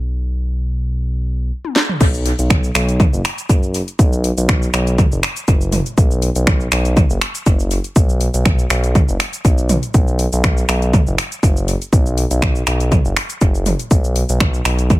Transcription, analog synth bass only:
0.00 1.52 B1 medium
2.01 2.33 B1 loud
2.39 2.70 B1 medium
2.75 3.07 B1 loud
3.13 3.22 F#1 loud
3.49 3.82 F#1 loud
3.99 4.31 B1 loud
4.37 4.69 B1 medium
4.74 5.06 B1 loud
5.12 5.20 F#1 loud
5.48 5.80 F#1 loud
5.98 6.30 B1 loud
6.36 6.67 B1 medium
6.72 7.04 B1 loud
7.10 7.18 F#1 loud
7.46 7.79 F#1 loud
7.96 8.28 B1 loud
8.34 8.65 B1 medium
8.70 9.03 B1 loud
9.09 9.17 F#1 loud
9.45 9.77 B1 loud
9.94 10.27 B1 loud
10.33 10.64 B1 medium
10.69 11.01 B1 loud
11.07 11.15 F#1 loud
11.43 11.75 F#1 loud
11.93 12.25 B1 loud
12.31 12.62 B1 medium
12.67 12.99 B1 loud
13.05 13.13 F#1 loud
13.41 13.74 F#1 loud
13.91 14.23 B1 loud
14.29 14.60 B1 medium
14.65 14.98 B1 loud

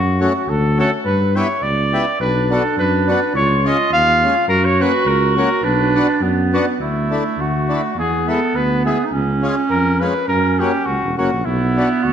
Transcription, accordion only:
0.20 0.33 A3 medium
0.20 0.33 C#4 medium
0.20 0.33 F#4 medium
0.78 0.90 A3 medium
0.78 0.90 C#4 soft
0.78 0.90 F#4 medium
1.35 1.48 B3 soft
1.35 1.48 E4 medium
1.35 1.48 G4 medium
1.93 2.05 B3 soft
1.93 2.05 E4 soft
1.93 2.05 G4 medium
2.51 2.63 B3 medium
2.51 2.63 D4 soft
2.51 2.63 F#4 medium
3.08 3.20 B3 soft
3.08 3.20 D4 soft
3.08 3.20 F#4 medium
3.65 3.77 G#3 medium
3.65 3.77 C#4 medium
3.65 3.77 F4 medium
4.23 4.35 G#3 medium
4.23 4.35 C#4 medium
4.23 4.35 F4 medium
4.80 4.92 A#3 medium
4.80 4.92 C#4 soft
4.80 4.92 F#4 medium
5.37 5.49 A#3 soft
5.37 5.49 C#4 soft
5.37 5.49 F#4 medium
5.95 6.07 B3 medium
5.95 6.07 D4 medium
5.95 6.07 F#4 medium
6.53 6.65 B3 medium
6.53 6.66 D4 soft
6.53 6.66 F#4 medium
7.11 7.23 A3 soft
7.11 7.24 D4 soft
7.11 7.24 E4 medium
7.69 7.82 A3 soft
7.69 7.82 D4 soft
7.69 7.82 E4 medium
8.27 8.40 G#3 soft
8.27 8.40 B3 soft
8.27 8.40 E4 soft
8.86 8.98 G#3 soft
8.86 8.98 B3 soft
8.86 8.98 E4 medium
9.43 9.55 G#3 medium
9.43 9.55 C#4 medium
9.43 9.55 F4 medium
10.01 10.14 G#3 soft
10.01 10.14 C#4 soft
10.01 10.14 F4 medium
10.59 10.72 A#3 medium
10.59 10.72 C#4 soft
10.59 10.72 F#4 medium
11.18 11.30 A#3 soft
11.18 11.30 C#4 soft
11.18 11.30 F#4 soft
11.77 11.89 B3 medium
11.77 11.89 D4 soft
11.77 11.89 F#4 medium

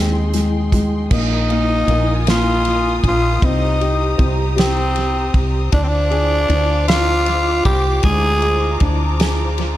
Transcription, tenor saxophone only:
0.00 0.72 C4 medium
1.14 2.24 D#4 medium
2.30 3.01 F4 medium
3.08 3.47 F4 medium
3.45 4.21 D#4 medium
4.59 5.41 C4 medium
5.73 5.85 D4 medium
5.83 5.89 C4 medium
5.88 6.87 D4 loud
6.88 7.62 F4 loud
7.65 8.02 G4 loud
8.04 8.87 G#4 loud

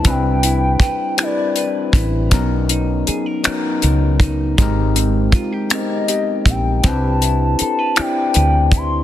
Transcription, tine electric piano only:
0.00 0.03 G3 medium
0.00 0.83 G3 medium
0.00 0.04 C4 medium
0.00 0.05 D4 medium
0.00 0.06 E4 medium
0.00 0.07 B4 medium
0.04 0.83 C4 medium
0.04 0.84 D4 medium
0.04 0.84 E4 medium
0.04 0.85 B4 medium
1.17 1.97 G3 medium
1.17 1.97 C4 medium
1.17 1.97 D4 medium
1.17 1.98 E4 medium
1.17 1.26 A#4 medium
1.28 2.02 B4 medium
2.30 3.10 F#3 medium
2.30 3.10 B3 medium
2.30 3.11 C#4 medium
2.30 3.11 D#4 medium
2.30 3.11 A#4 medium
3.43 4.23 F#3 medium
3.43 4.23 B3 medium
3.43 4.24 C#4 medium
3.43 4.24 D#4 medium
3.43 4.25 A#4 medium
4.58 5.37 G#3 medium
4.58 5.37 C4 medium
4.58 5.38 D#4 medium
4.58 5.38 G4 medium
4.62 5.39 A#4 medium
5.70 6.49 G#3 medium
5.70 5.78 B3 soft
5.70 6.51 D#4 medium
5.70 6.51 G4 medium
5.70 6.51 A#4 medium
5.78 6.53 C4 medium
6.84 7.63 C4 medium
6.84 7.63 D4 medium
6.84 7.64 E4 medium
6.84 7.64 G4 medium
6.84 7.65 B4 medium
7.96 8.75 C4 medium
7.96 8.76 D4 medium
7.96 8.76 E4 medium
7.96 8.77 G4 medium
7.96 8.77 D5 medium

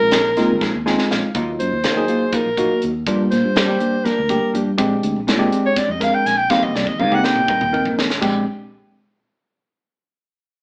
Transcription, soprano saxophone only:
0.00 0.81 A#4 loud
1.60 2.37 C5 medium
2.35 2.83 A#4 medium
3.31 4.06 C5 medium
4.05 4.54 A#4 medium
5.66 5.79 C#5 medium
5.78 5.93 D5 medium
5.91 6.05 D#5 medium
6.03 6.16 F5 medium
6.14 6.28 G5 medium
6.26 6.39 G#5 medium
6.37 6.52 G5 medium
6.50 6.65 F5 loud
6.63 6.77 D#5 medium
6.75 6.90 D5 medium
6.89 7.01 D#5 medium
7.00 7.16 F5 medium
7.14 7.26 F#5 medium
7.25 7.98 G5 loud

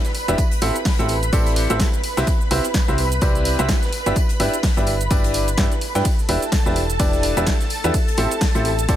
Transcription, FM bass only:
0.28 0.35 E1 medium
0.62 0.71 A1 loud
0.99 1.31 A1 loud
1.33 1.67 A1 loud
1.70 1.83 A1 medium
2.17 2.24 C2 loud
2.51 2.60 C2 loud
2.88 3.20 C2 loud
3.22 3.56 C2 loud
3.59 3.72 C2 loud
4.06 4.13 G1 loud
4.40 4.49 G1 medium
4.77 5.09 G1 loud
5.11 5.56 G1 loud
5.58 5.67 G2 medium
5.95 6.02 G2 loud
6.29 6.38 E1 medium
6.66 6.98 E1 loud
7.00 7.34 E1 loud
7.37 7.50 E1 loud
7.84 7.91 E2 loud
8.18 8.27 A1 loud
8.55 8.87 A1 loud
8.89 8.96 A1 medium

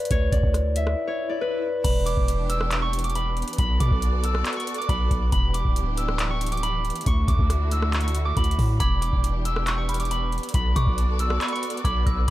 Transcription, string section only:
1.85 3.57 E3 medium
1.85 7.02 B3 medium
1.85 3.57 D4 medium
1.85 3.57 G4 medium
3.58 5.31 F#4 medium
3.58 5.31 A4 medium
3.58 5.31 D5 medium
5.32 7.05 E3 medium
5.32 7.05 D4 medium
5.32 7.05 G4 medium
7.06 8.78 D3 medium
7.06 8.78 A3 medium
7.06 8.78 E4 medium
7.06 8.78 F#4 medium
8.80 10.52 E3 medium
8.80 12.30 B3 medium
8.80 10.52 D4 medium
8.80 10.52 G4 medium
10.54 12.26 F#4 medium
10.54 12.26 A4 medium
10.54 12.26 D5 medium

